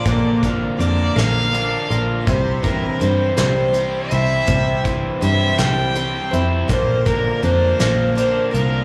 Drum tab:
HH |xxxxxx|xxxxxx|xxxxxx|xxxxxx|
SD |---o--|---o--|---o--|---o--|
BD |oo----|oo----|oo----|oo----|